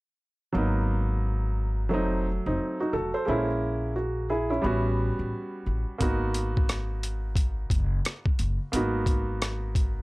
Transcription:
0.52 G#1 F#3 A#3 B3
0.57 D#4
1.89 F1 F#3 A3 C4
1.94 D#4
2.46 F1 C4 D#4
2.80 D#4 F#4
2.93 F1 F#4 A4
3.14 A4 C5
3.25 A#1 G#3 A#3 C#4
3.30 E4
3.96 F#4
4.30 E4 G#4
4.50 C#4 E4
4.62 A1 G3 B3 C#4
4.66 F#4
5.19 A1
5.66 A1
5.98 G#1 A#3 B3 D#4, kick, closed hi-hat
6.03 F#4
6.34 closed hi-hat
6.57 kick
6.69 cross-stick, closed hi-hat
7.03 closed hi-hat
7.36 kick, closed hi-hat
7.70 F#1, kick, closed hi-hat
8.05 cross-stick, closed hi-hat
8.26 kick
8.39 F#1, closed hi-hat
8.72 G#1 A#3 B3 D#4, closed hi-hat
8.76 F#4
9.06 kick, closed hi-hat
9.42 cross-stick, closed hi-hat
9.75 kick, closed hi-hat

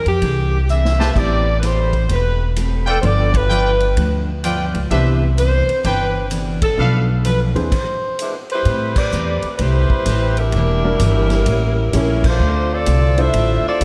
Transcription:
0.06 F2 G4, ride
0.22 C2 E3 C4 D4 G#4, kick, ride
0.69 E3 C4 D4 G#4 E5, hi-hat pedal
0.85 snare
0.99 G4 B4 C5 A5, snare
1.15 A1 A3 B3 C4 E4 G4 B4 D5, kick, crash
1.59 A3 C4 B4, snare, hi-hat pedal, ride
1.64 G4 B4 C5
1.93 kick, ride
2.09 E1 A3 C4 G4 B4, kick, ride
2.13 B4
2.56 A3 C4 G4 B4, hi-hat pedal, ride
2.86 F4 A4 B4 D5 G5, ride
3.01 G1 G2 F3 B3 D4 F4 A4 C5 D5, kick, ride
3.34 B4, kick, ride
3.50 G2 F3 B3 D4 F4 B4 D5 G5, hi-hat pedal
3.80 ride
3.97 D2 G2 F3 B3 D4, kick, ride
4.44 G2 F3 B3 D4 F4 B4 D5 G5, hi-hat pedal, ride
4.74 C#2, ride
4.91 C2 C3 E3 B3 D4 E4 G4 B4 C5 E5, kick, ride
5.37 C3 E3 B3 D4 C5, hi-hat pedal, ride
5.68 muted upright bass stroke, ride
5.83 G1 C3 E3 B3 D4 B4 C5 G5, kick, ride
6.30 C3 E3 B3 D4, hi-hat pedal, ride
6.62 A4, kick, ride
6.78 B1 B2 F3 A3 B3 D4 F4 A4 B4 F5
7.25 B2 F3 A3 D4 B4, hi-hat pedal, ride
7.55 D#2 E3 C4 D4 G#4 B4 C5, ride
7.72 kick, crash, ride
8.19 G#3 D4 E4 B4, hi-hat pedal, ride
8.50 G3 E4 B4 C5, ride
8.65 A2 A3 C4 G4 B4, kick, ride
8.96 C4 G4 B4 D5, kick, crash
9.12 E2 A3 C4 G4 B4, hi-hat pedal
9.42 muted upright bass stroke, ride
9.57 C2 A3 E4 B4, kick, ride
9.61 G3 C4 G4 B4 C5
9.90 muted upright bass stroke, kick
10.06 A1 A3 C4 G4 B4, kick, hi-hat pedal, ride
10.37 G3 D4 E4 A#4, ride
10.52 E1 E3 A#3, kick, ride
10.56 D4 G4
10.84 G3 D4 E4 F#4 A#4
10.99 G1 E3 A#3 D4 G4, kick, hi-hat pedal, ride
11.30 snare, ride
11.46 A1 A2 G3 A#3 C#4, kick, ride
11.93 A#1 A2 G3 A3 A#3 C#4 E4 G4 A#4 C#5, kick, hi-hat pedal, ride
12.24 A3 D4 F4, kick, crash
12.28 C5
12.39 D2 D3 A3 C4 F4
12.73 C4 F4 A4 D5
12.86 C2 D3 A3 C4 F4, kick, hi-hat pedal, ride
13.18 A3 D4 E4 F4 A4 C5 E5, ride
13.33 A1 D3 A3 C4 F4, kick, ride
13.64 C4 F4 A4, muted upright bass stroke
13.68 D5
13.81 B1 F4, kick, hi-hat pedal, ride

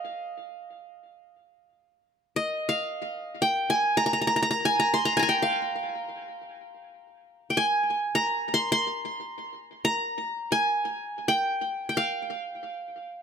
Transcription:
Already playing: F5
2.36 D#5
2.69 F5
3.42 G5
3.70 G#5
3.97 A#5
4.06 A#5
4.13 A#5
4.21 A#5
4.27 A#5
4.36 A#5
4.42 A#5
4.51 A#5
4.65 G#5
4.80 A#5
4.94 C6
5.05 A#5
5.17 G#5 A#5
5.23 G#5
5.29 G5
5.42 F5
7.50 G5
7.57 G#5
8.15 A#5
8.54 C6
8.72 C6
9.85 A#5
10.52 G#5
11.28 G5
11.89 G5
11.97 F5

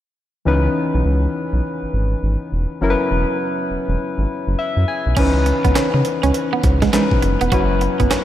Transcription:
0.45 C#2 E3 C#4 D#4 B4
0.95 B1
1.05 C#2
1.53 B1
1.83 G#1
1.93 G#1
2.23 G#1
2.52 E1
2.81 F#1 F#3 C#4 E4 A#4
2.90 B4
3.11 E1
3.70 E1
3.89 E1
4.18 G#1
4.47 F#1
4.59 E5
4.77 F#2
4.88 G#5
5.06 B1
5.16 C#2 E3 C#4 D#4 B4, kick, closed hi-hat, crash, cowbell
5.46 muted clean electric guitar stroke, closed hi-hat
5.65 C#2 B3, kick, closed hi-hat
5.75 C#3 C#4, snare, clap, closed hi-hat, cowbell
5.94 C#3, muted clean electric guitar stroke
6.05 closed hi-hat, cowbell
6.23 C#2 C#4, closed hi-hat
6.34 closed hi-hat, cowbell
6.53 B3
6.63 C#2, muted clean electric guitar stroke, kick, closed hi-hat, cowbell
6.82 G#3, kick, snare, closed hi-hat
6.93 E3 G#3 C#4 D#4 B4, snare, clap, closed hi-hat, cowbell
7.11 B1, kick
7.22 F#1, muted clean electric guitar stroke, closed hi-hat
7.41 E1 B3, closed hi-hat
7.52 F#1 F#3 C#4 E4 F#4 B4, kick, closed hi-hat, cowbell
7.81 muted clean electric guitar stroke, closed hi-hat
8.00 F#1 B3, kick, closed hi-hat
8.11 F#2 C#4, snare, clap, closed hi-hat, cowbell

